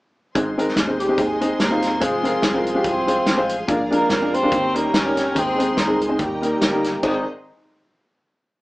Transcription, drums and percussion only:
0.35 kick, closed hi-hat
0.59 closed hi-hat
0.68 snare
0.76 kick, snare, closed hi-hat
1.00 closed hi-hat
1.18 kick, closed hi-hat
1.41 closed hi-hat
1.60 snare, closed hi-hat
1.82 snare, closed hi-hat
2.01 kick, closed hi-hat
2.25 closed hi-hat
2.42 kick, snare, closed hi-hat
2.66 closed hi-hat
2.84 kick, closed hi-hat
3.08 closed hi-hat
3.26 snare, closed hi-hat
3.49 closed hi-hat
3.68 kick, closed hi-hat
3.92 closed hi-hat
4.09 kick, snare, closed hi-hat
4.34 closed hi-hat
4.51 kick, closed hi-hat
4.75 closed hi-hat
4.94 snare, closed hi-hat
5.17 snare, closed hi-hat
5.36 kick, closed hi-hat
5.60 closed hi-hat
5.77 kick, snare, closed hi-hat
6.01 closed hi-hat
6.19 kick, closed hi-hat
6.43 closed hi-hat
6.61 snare, closed hi-hat
6.84 snare, closed hi-hat
7.03 kick, crash

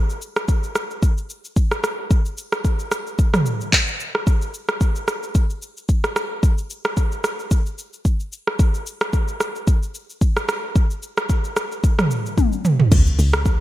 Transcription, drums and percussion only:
0.10 shaker
0.22 shaker
0.36 cross-stick, shaker
0.48 kick, shaker
0.63 shaker
0.75 cross-stick, shaker
0.91 shaker
1.02 kick, shaker
1.18 shaker
1.30 shaker
1.45 shaker
1.56 kick, shaker
1.71 cross-stick, shaker
1.84 cross-stick, shaker
2.11 kick, shaker
2.25 shaker
2.38 shaker
2.52 cross-stick, shaker
2.64 kick, shaker
2.79 shaker
2.91 cross-stick, shaker
3.07 shaker
3.19 kick, shaker
3.34 cross-stick, mid tom, shaker
3.46 shaker
3.61 shaker
3.73 kick, clap, shaker
3.88 shaker
4.00 shaker
4.15 cross-stick
4.27 kick, shaker
4.42 shaker
4.54 shaker
4.68 cross-stick, shaker
4.81 kick, shaker
4.96 shaker
5.08 cross-stick, shaker
5.23 shaker
5.35 kick, shaker
5.50 shaker
5.62 shaker
5.77 shaker
5.89 kick, shaker
6.04 cross-stick, shaker
6.16 cross-stick, shaker
6.43 kick, shaker
6.58 shaker
6.70 shaker
6.85 cross-stick, shaker
6.97 kick, shaker
7.12 shaker
7.24 cross-stick, shaker
7.39 shaker
7.51 kick, shaker
7.66 shaker
7.78 shaker
7.93 shaker
8.05 kick, shaker
8.20 shaker
8.32 shaker
8.47 cross-stick
8.59 kick, shaker
8.74 shaker
8.86 shaker
9.01 cross-stick, shaker
9.13 kick, shaker
9.28 shaker
9.40 cross-stick, shaker
9.55 shaker
9.67 kick, shaker
9.83 shaker
9.95 shaker
10.10 shaker
10.21 kick, shaker
10.36 cross-stick, shaker
10.49 cross-stick, shaker
10.76 kick, shaker
10.90 shaker
11.03 shaker
11.17 cross-stick, shaker
11.29 kick, shaker
11.44 shaker
11.56 cross-stick, shaker
11.72 shaker
11.84 kick, shaker
11.99 cross-stick, mid tom, shaker
12.11 shaker
12.26 shaker
12.38 kick, high tom, shaker
12.52 shaker
12.65 mid tom, shaker
12.80 floor tom
12.92 kick, crash, shaker
13.07 shaker
13.19 open hi-hat, shaker
13.33 cross-stick, shaker
13.45 kick, shaker

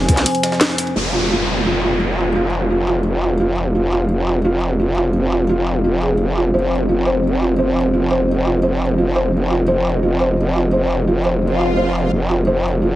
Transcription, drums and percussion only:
0.08 kick, open hi-hat, ride
0.17 snare, closed hi-hat, ride
0.26 closed hi-hat, open hi-hat
0.35 closed hi-hat
0.43 snare, closed hi-hat, ride
0.52 snare
0.61 snare, closed hi-hat, ride
0.70 snare
0.78 open hi-hat, ride
0.87 ride

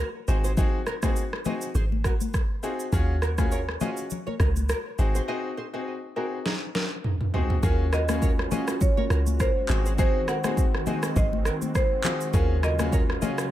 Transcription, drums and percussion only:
0.28 shaker
0.44 shaker
0.57 kick, low conga, shaker
0.87 cross-stick, shaker
1.03 kick, cross-stick, high conga, shaker
1.16 shaker
1.33 cross-stick
1.45 high conga, low conga, shaker
1.62 shaker
1.75 low conga, shaker
1.92 high conga
2.04 kick, cross-stick, shaker
2.21 high conga, shaker
2.34 kick, cross-stick, shaker
2.63 shaker
2.80 shaker
2.92 kick, low conga, shaker
3.22 cross-stick, shaker
3.38 kick, cross-stick, high conga, shaker
3.52 shaker
3.69 cross-stick
3.81 high conga, low conga, shaker
3.97 shaker
4.10 low conga, shaker
4.27 high conga
4.40 kick, cross-stick, shaker
4.56 high conga, shaker
4.69 cross-stick, shaker
4.99 shaker
5.15 shaker
6.46 snare
6.75 snare
7.04 mid tom
7.21 mid tom
7.34 floor tom
7.50 floor tom
7.63 kick, low conga, shaker
7.93 cross-stick, shaker
8.09 cross-stick, high conga, shaker
8.22 kick, shaker
8.39 cross-stick
8.51 high conga, low conga, shaker
8.68 cross-stick, shaker
8.81 kick, low conga, shaker
8.98 high conga
9.10 cross-stick, shaker
9.27 high conga, shaker
9.40 kick, cross-stick, shaker
9.69 clap, low conga, shaker
9.86 shaker
9.98 kick, low conga, shaker
10.28 cross-stick, shaker
10.44 cross-stick, high conga, shaker
10.57 kick, shaker
10.75 cross-stick
10.86 high conga, low conga, shaker
11.03 cross-stick, shaker
11.16 kick, low conga, shaker
11.33 high conga
11.45 cross-stick, shaker
11.62 high conga, shaker
11.75 kick, cross-stick, shaker
12.04 clap, low conga, shaker
12.21 shaker
12.33 kick, low conga, shaker
12.63 cross-stick, shaker
12.79 cross-stick, high conga, shaker
12.93 kick, shaker
13.10 cross-stick
13.22 high conga, low conga, shaker
13.38 cross-stick, shaker

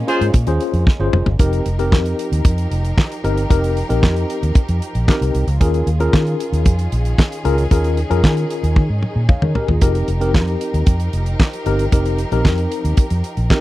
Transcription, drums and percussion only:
0.08 closed hi-hat
0.21 closed hi-hat
0.34 kick, closed hi-hat
0.47 closed hi-hat
0.60 closed hi-hat
0.74 closed hi-hat
0.87 kick, snare
1.13 mid tom
1.26 floor tom
1.39 kick, closed hi-hat
1.53 closed hi-hat
1.66 closed hi-hat
1.79 closed hi-hat
1.92 kick, snare, clap
2.06 closed hi-hat
2.19 closed hi-hat
2.33 closed hi-hat
2.45 kick, closed hi-hat
2.58 closed hi-hat
2.72 closed hi-hat
2.85 closed hi-hat
2.98 kick, snare, clap
3.12 closed hi-hat
3.24 closed hi-hat
3.37 closed hi-hat
3.50 kick, closed hi-hat
3.64 closed hi-hat
3.77 closed hi-hat
3.90 closed hi-hat
4.03 kick, snare, clap
4.16 closed hi-hat
4.30 closed hi-hat
4.43 closed hi-hat
4.55 kick, closed hi-hat
4.69 closed hi-hat
4.82 closed hi-hat
4.95 closed hi-hat
5.08 kick, snare, clap
5.22 closed hi-hat
5.35 closed hi-hat
5.48 closed hi-hat
5.61 kick, closed hi-hat
5.74 closed hi-hat
5.87 closed hi-hat
6.00 closed hi-hat
6.13 kick, snare, clap
6.27 closed hi-hat
6.40 closed hi-hat
6.54 closed hi-hat
6.66 kick, closed hi-hat
6.79 closed hi-hat
6.92 closed hi-hat
7.05 closed hi-hat
7.18 kick, snare, clap
7.32 closed hi-hat
7.45 closed hi-hat
7.58 closed hi-hat
7.71 kick, closed hi-hat
7.84 closed hi-hat
7.97 closed hi-hat
8.11 closed hi-hat
8.24 kick, snare, clap
8.37 closed hi-hat
8.50 closed hi-hat
8.64 closed hi-hat
8.76 kick, high tom
9.03 mid tom
9.29 kick, mid tom
9.42 mid tom
9.55 floor tom
9.68 floor tom
9.81 kick, closed hi-hat
9.95 closed hi-hat
10.08 closed hi-hat
10.21 closed hi-hat
10.34 kick, snare, clap
10.48 closed hi-hat
10.61 closed hi-hat
10.74 closed hi-hat
10.86 kick, closed hi-hat
11.00 closed hi-hat
11.13 closed hi-hat
11.26 closed hi-hat
11.40 kick, snare, clap
11.53 closed hi-hat
11.66 closed hi-hat
11.79 closed hi-hat
11.92 kick, closed hi-hat
12.06 closed hi-hat
12.18 closed hi-hat
12.32 closed hi-hat
12.45 kick, snare, clap
12.58 closed hi-hat
12.72 closed hi-hat
12.85 closed hi-hat
12.97 kick, closed hi-hat
13.10 closed hi-hat
13.24 closed hi-hat
13.37 closed hi-hat
13.50 kick, snare, clap

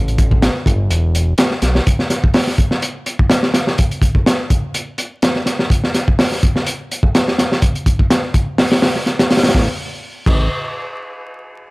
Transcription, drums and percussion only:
0.08 closed hi-hat
0.18 kick, closed hi-hat
0.31 kick
0.42 snare, closed hi-hat
0.66 kick, closed hi-hat
0.90 closed hi-hat
1.15 closed hi-hat
1.38 snare, closed hi-hat
1.51 snare
1.62 snare, closed hi-hat
1.75 snare
1.87 kick, closed hi-hat
1.99 snare
2.10 snare, closed hi-hat
2.24 kick
2.34 snare, open hi-hat
2.47 snare
2.58 kick, closed hi-hat
2.71 snare
2.82 closed hi-hat
3.06 closed hi-hat
3.19 kick
3.30 snare, closed hi-hat
3.43 snare
3.54 snare, closed hi-hat
3.67 snare
3.78 kick, closed hi-hat
3.91 closed hi-hat
4.02 kick, closed hi-hat
4.15 kick
4.26 snare, closed hi-hat
4.50 kick, closed hi-hat
4.74 closed hi-hat
4.98 closed hi-hat
5.22 snare, closed hi-hat
5.36 snare
5.46 snare, closed hi-hat
5.59 snare
5.70 kick, closed hi-hat
5.84 snare
5.94 snare, closed hi-hat
6.08 kick
6.19 snare, open hi-hat
6.32 snare
6.43 kick, closed hi-hat
6.56 snare
6.66 closed hi-hat
6.91 closed hi-hat
7.03 kick
7.15 snare, closed hi-hat
7.28 snare
7.38 snare, closed hi-hat
7.52 snare
7.62 kick, closed hi-hat
7.75 closed hi-hat
7.86 kick, closed hi-hat
7.99 kick
8.10 snare, closed hi-hat
8.34 kick, closed hi-hat
8.58 snare, open hi-hat
8.70 snare, open hi-hat
8.82 snare, open hi-hat
8.96 snare
9.06 snare, closed hi-hat
9.19 snare, closed hi-hat
9.30 snare, open hi-hat
9.37 snare, open hi-hat
9.43 snare, open hi-hat
9.49 snare, open hi-hat
9.54 kick, snare
10.26 kick, crash

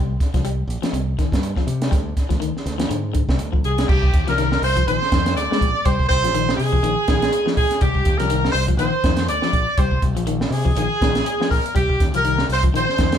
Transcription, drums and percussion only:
0.20 kick, snare, closed hi-hat
0.34 kick, snare, closed hi-hat
0.45 closed hi-hat
0.70 closed hi-hat
0.83 snare, closed hi-hat
0.94 closed hi-hat
1.19 kick, snare, closed hi-hat
1.32 kick, snare, closed hi-hat
1.43 closed hi-hat
1.56 kick, snare
1.68 closed hi-hat
1.82 snare, closed hi-hat
1.92 kick, snare, closed hi-hat
2.17 kick, snare, closed hi-hat
2.30 kick, snare, closed hi-hat
2.42 closed hi-hat
2.57 snare
2.66 snare, closed hi-hat
2.80 snare, closed hi-hat
2.91 closed hi-hat
3.15 kick, closed hi-hat
3.29 kick, snare
3.39 closed hi-hat
3.53 kick
3.64 closed hi-hat
3.78 snare, closed hi-hat
3.89 kick, crash
4.03 kick
4.14 kick, closed hi-hat
4.28 snare, closed hi-hat
4.38 snare, closed hi-hat
4.52 snare
4.63 open hi-hat
4.77 kick, closed hi-hat
4.88 closed hi-hat
5.02 snare
5.12 kick, snare, closed hi-hat
5.26 snare, closed hi-hat
5.38 snare, closed hi-hat
5.52 snare
5.61 kick, closed hi-hat
5.85 kick, closed hi-hat
5.99 kick
6.10 kick, closed hi-hat
6.24 snare, closed hi-hat
6.35 closed hi-hat
6.49 snare
6.59 open hi-hat
6.73 kick
6.84 closed hi-hat
7.08 kick, snare, closed hi-hat
7.22 snare, closed hi-hat
7.33 closed hi-hat
7.47 snare
7.57 kick, open hi-hat
7.71 snare, closed hi-hat
7.81 kick, closed hi-hat
7.95 kick
8.05 kick, closed hi-hat
8.20 snare, closed hi-hat
8.30 closed hi-hat
8.45 snare
8.54 open hi-hat
8.68 kick, closed hi-hat
8.79 closed hi-hat
9.04 kick, snare, closed hi-hat
9.17 snare, closed hi-hat
9.28 closed hi-hat
9.42 snare
9.53 kick, closed hi-hat
9.78 kick, closed hi-hat
9.91 kick
10.02 kick, closed hi-hat
10.17 closed hi-hat
10.27 closed hi-hat
10.41 snare
10.52 open hi-hat
10.66 kick
10.77 closed hi-hat
11.01 kick, snare, closed hi-hat
11.15 snare, closed hi-hat
11.26 closed hi-hat
11.41 snare
11.51 kick, snare, open hi-hat
11.66 closed hi-hat
11.76 kick, closed hi-hat
11.89 kick
12.00 kick, snare, closed hi-hat
12.14 closed hi-hat
12.25 closed hi-hat
12.38 snare
12.50 open hi-hat
12.63 kick, closed hi-hat
12.75 closed hi-hat
12.89 snare
12.98 kick, snare, closed hi-hat
13.12 snare, closed hi-hat

